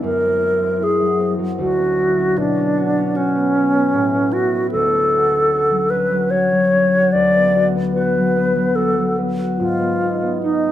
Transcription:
Already playing: harp F#3 E4
0.02 harp F#2, alto flute A#4
0.24 harp C4
0.43 harp E4
0.62 harp C4
0.81 harp E4, alto flute G#4
1.01 harp F#3
1.19 harp C4
1.39 harp F#3
1.58 harp D2, alto flute F#4
1.78 harp C#4
1.99 harp E4
2.18 harp C#4
2.37 harp B2, alto flute D4
2.56 harp C#4
2.77 harp F#4
2.97 harp C#4
3.16 alto flute C#4, harp F#4
3.35 harp B3
3.55 harp C#4
3.74 harp B3
3.94 harp A2
4.14 harp B3
4.33 harp E4, alto flute F#4
4.54 harp B3
4.71 harp D2, alto flute A4
4.94 harp C#4
5.13 harp F#4
5.32 harp C#4
5.52 harp F#4
5.71 harp F#3
5.90 harp C#4, alto flute B4
6.11 harp F#3
6.31 harp F#4, alto flute C#5
6.52 harp F#3
6.72 harp C#4
6.94 harp F#4
7.12 harp D2, alto flute D5
7.36 harp B3
7.56 harp F#4
7.76 harp B3
7.94 harp F#4, alto flute B4
8.17 harp F#3
8.36 harp B3
8.56 harp F#3
8.76 harp F#4, alto flute A4
8.98 harp F#3
9.18 harp B3
9.38 harp F#4
9.58 harp G#2, alto flute F4
9.79 harp B3
10.01 harp D#4
10.22 harp B3
10.43 alto flute D#4, harp D#4
10.66 harp G#3

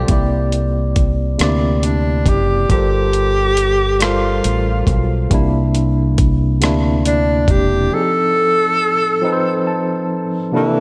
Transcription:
Already playing: tine electric piano G3 F4 A4 C5, clean electric guitar G4
0.08 fingered electric bass C2, tine electric piano C3 A#3 E4, kick, closed hi-hat
0.12 tine electric piano D5
0.52 closed hi-hat
0.96 kick, closed hi-hat
1.39 fingered electric bass D2, tine electric piano C3 A#3 D4, cross-stick, closed hi-hat
1.43 tine electric piano D5
1.48 tine electric piano E4
1.83 tenor saxophone D4, closed hi-hat
2.26 fingered electric bass F#1, tenor saxophone G4, kick, closed hi-hat
2.69 fingered electric bass G1, tine electric piano G3 F4 A4 A#4, tenor saxophone G4, kick, closed hi-hat
2.73 tine electric piano C5
3.13 closed hi-hat
3.57 closed hi-hat
3.99 tine electric piano G3 F4 A4 A#4, tenor saxophone F4, cross-stick, closed hi-hat
4.04 tine electric piano C5
4.44 fingered electric bass A1, closed hi-hat
4.87 fingered electric bass B1, kick, closed hi-hat
5.30 fingered electric bass C2, tine electric piano C3 A#3 D4, kick, closed hi-hat
5.34 tine electric piano E4
5.75 closed hi-hat
6.18 kick, closed hi-hat
6.60 fingered electric bass D2, tine electric piano C3 A#3 D4, cross-stick, closed hi-hat
6.65 tine electric piano E4
7.05 tenor saxophone D4, closed hi-hat
7.48 fingered electric bass E1, tenor saxophone G4, kick, closed hi-hat
7.92 tine electric piano F3 C4 D#4, tenor saxophone A4
7.96 tine electric piano G#4
8.02 tine electric piano A4
9.21 tine electric piano F3 C4 D#4
9.26 tine electric piano B4
9.33 tine electric piano C5
9.67 tine electric piano A5
10.52 tine electric piano C3 A#3 D4 E4
10.56 tenor saxophone E3, tine electric piano A4

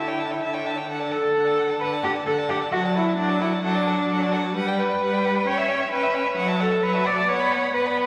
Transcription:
Already playing: viola D3, cello E4
0.07 violin C#5 G5
0.19 violin E5 A5
0.31 violin C#5 G5
0.42 viola D3, violin E5 A5
0.54 violin C#5 G5
0.65 violin E5 A5
0.76 violin C#5 G5
0.87 viola D3, violin A4 F#5
0.99 violin D5 A5
1.11 violin A4 F#5, cello A4
1.21 violin D5 A5
1.33 viola D3, violin A4 F#5
1.44 violin D5 A5
1.56 violin A4 F#5
1.68 violin D5 A5
1.80 viola D3, violin A4 F#5, cello B4
1.91 violin D5 A5
2.03 cello G4, violin A4 F#5
2.15 violin D5 A5
2.26 viola D3, cello A4, violin A4 F#5
2.37 violin D5 A5
2.49 cello G4, violin A4 F#5
2.60 violin D5 A5
2.72 viola F#3, cello F#4, violin A4 F#5
2.83 violin D5 A5
2.95 cello E4, violin A4 F#5
3.06 violin D5 A5
3.17 viola F#3, cello D4, violin A4 F#5
3.29 violin D5 A5
3.40 cello E4, violin A4 F#5
3.52 violin D5 A5
3.63 viola F#3, cello D4, violin A4 F#5
3.75 violin D5 A5
3.86 violin A4 F#5
3.98 violin D5 A5
4.09 viola F#3, violin A4 F#5
4.21 violin D5 A5
4.32 violin A4 F#5
4.43 violin D5 A5
4.55 viola G3, violin B4 F#5
4.66 violin D5 G5
4.78 cello B4, violin B4 F#5
4.89 violin D5 G5
5.01 viola G3, violin B4 F#5
5.12 violin D5 G5
5.24 violin B4 F#5
5.34 violin D5 G5
5.46 viola C#4, violin C#5 G5, cello C#5
5.57 violin E5
5.68 violin C#5 G5
5.80 violin E5
5.90 viola C#4, cello B4, violin C#5 G5
6.03 violin E5
6.14 violin C#5 G5
6.25 violin E5
6.36 viola F#3, violin C#5 F#5
6.47 violin E5 A5
6.60 cello A4, violin C#5 F#5
6.71 violin E5 A5
6.82 viola F#3, cello B4, violin C#5 F#5
6.93 violin E5 A5
7.04 violin C#5 F#5, cello D5
7.17 violin E5 A5
7.28 viola B3, violin B4 F#5, cello C#5
7.40 violin D5 B5
7.52 violin B4 F#5
7.63 violin D5 B5
7.74 viola B3, cello B4, violin B4 F#5
7.86 violin D5 B5
7.97 violin B4 F#5

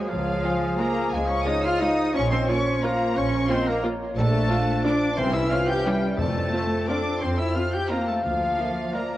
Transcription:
Already playing: bassoon F#3
0.08 double bass section C#2, french horn section F3, cello section F3, bassoon F3, oboe F4, clarinet G#4, flute C#5, violin section F5
0.43 viola section G#3 F4, flute G#5
0.78 viola section G#3 F4, cello section A#3, french horn section A#3, oboe A#4, violin section A#5
1.12 double bass section C#2, cello section G#3, french horn section G#3, oboe G#4, flute F5, violin section G#5
1.26 cello section C#4, french horn section C#4, oboe C#5, violin section C#6
1.45 viola section G#3 F4, cello section D#4, french horn section D#4, flute C#5, oboe D#5, violin section D#6
1.63 cello section F4, french horn section F4, oboe F5, violin section F6
1.80 viola section G#3 F4, cello section D#4, french horn section D#4, oboe D#5, flute F5, violin section D#6
2.13 double bass section A#1, bassoon F3, cello section C#4, french horn section C#4, clarinet F4, oboe C#5, flute D#5, violin section C#6
2.30 cello section C4, french horn section C4, oboe C5, violin section C6
2.47 viola section A#3 F4, cello section C#4, french horn section C#4, flute C#5, oboe C#5, violin section C#6
2.82 viola section A#3 F4, cello section A#3, french horn section A#3, oboe A#4, flute F5, violin section A#5
3.15 double bass section A#1, cello section C#4, french horn section C#4, oboe C#5, violin section C#6
3.48 viola section A#3 F4, cello section C4, french horn section C4, oboe C5, flute D#5, violin section C6
3.66 cello section A#3, french horn section A#3, oboe A#4, violin section A#5
3.83 viola section A#3 F4, flute C#5
4.16 double bass section A#1, bassoon F3, cello section A3, french horn section A3, clarinet D4, oboe A4, flute D5, violin section A5
4.49 viola section D4 F4, flute F5
4.84 cello section D4, viola section D4 F4, french horn section D4, oboe D5, flute D5, violin section D6
5.17 double bass section C2, timpani C3, bassoon E3, cello section C4, french horn section C4, clarinet C#4, oboe C5, flute E5, violin section C6
5.33 french horn section E4, cello section E4, oboe E5, violin section E6
5.50 viola section C#4 E4, cello section F4, french horn section F4, flute C5, oboe F5, violin section F6
5.67 cello section G4, french horn section G4, oboe G5, violin section G6
5.85 cello section G3, french horn section G3, viola section C#4 E4, oboe G4, flute E5, violin section G5
6.18 timpani F2, double bass section F2, bassoon F3, cello section A3, french horn section A3, clarinet C4, oboe A4, flute D5, violin section A5
6.53 viola section C4 F4, flute C5
6.88 viola section C4 F4, cello section D4, french horn section D4, flute A4, oboe D5, violin section D6
7.21 double bass section F2, french horn section C4, cello section C4, oboe C5, flute C5, violin section C6
7.37 french horn section E4, cello section E4, oboe E5, violin section E6
7.55 viola section C4 F4, cello section F4, french horn section F4, oboe F5, violin section F6
7.72 cello section G4, french horn section G4, oboe G5, violin section G6
7.90 cello section A#3, french horn section A#3, viola section C4 F4, oboe A#4, flute F5, violin section A#5
8.07 cello section A3, french horn section A3, oboe A4, violin section A5
8.23 double bass section D2, bassoon F3, cello section F3, french horn section F3, clarinet A#3, oboe F4, violin section F5
8.58 viola section A#3 F4, flute E5
8.94 viola section A#3 F4, cello section A#3, french horn section A#3, oboe A#4, flute D5, violin section A#5

